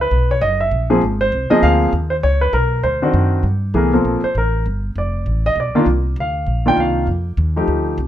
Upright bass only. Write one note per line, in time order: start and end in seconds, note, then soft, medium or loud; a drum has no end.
0.00 0.10 C#2 medium
0.11 0.40 B1 medium
0.41 0.71 F#1 medium
0.71 1.01 A#1 medium
1.02 1.31 G#1 medium
1.32 1.50 C2 medium
1.51 muted upright bass stroke soft
1.62 1.92 D2 medium
1.93 2.22 D#2 medium
2.23 2.52 C#2 medium
2.53 2.82 B1 medium
2.83 3.13 D2 medium
3.14 3.43 F#2 medium
3.43 3.73 G2 medium
3.74 4.04 C2 medium
4.05 4.22 A#1 medium
4.23 muted upright bass stroke soft
4.35 4.64 A1 medium
4.66 4.95 G1 medium
4.96 5.25 F1 medium
5.26 5.55 A1 medium
5.56 5.73 B1 medium
5.75 muted upright bass stroke soft
5.86 6.15 C2 medium
6.16 6.46 D2 medium
6.46 6.76 A#1 medium
6.77 7.06 C2 medium
7.07 7.37 F2 medium
7.37 7.67 D#2 medium
7.68 7.97 D2 medium
7.98 8.07 C2 medium